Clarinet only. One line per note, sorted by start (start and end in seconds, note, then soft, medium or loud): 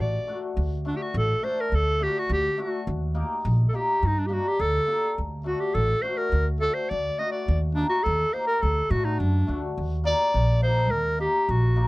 0.01 0.40 D5 medium
0.87 0.98 D4 medium
0.97 1.04 G4 medium
1.02 1.15 F#4 medium
1.18 1.46 A4 medium
1.44 1.62 C5 loud
1.60 1.77 A#4 medium
1.75 2.05 A4 medium
2.03 2.20 G4 medium
2.19 2.31 F#4 medium
2.33 2.62 G4 medium
2.61 2.88 F#4 medium
3.69 3.77 A4 medium
3.75 4.08 G4 medium
4.06 4.20 D#4 medium
4.19 4.28 D4 medium
4.27 4.35 G4 medium
4.33 4.49 F#4 medium
4.47 4.62 G4 loud
4.61 5.18 A4 loud
5.46 5.62 F#4 medium
5.60 5.76 G4 medium
5.74 6.04 A4 medium
6.02 6.19 C5 medium
6.17 6.46 A#4 medium
6.61 6.75 A4 loud
6.74 6.91 C5 medium
6.90 7.20 D5 loud
7.19 7.31 D#5 medium
7.32 7.59 D5 medium
7.75 7.89 D4 medium
7.89 8.05 F#4 medium
8.03 8.35 A4 medium
8.33 8.46 C5 medium
8.47 8.64 A#4 medium
8.62 8.92 A4 medium
8.90 9.06 F#4 medium
9.05 9.20 D#4 medium
9.19 9.62 D4 medium
10.06 10.59 D5 loud
10.63 10.92 C5 loud
10.91 11.20 A#4 medium
11.20 11.51 G4 medium
11.50 11.88 F#4 medium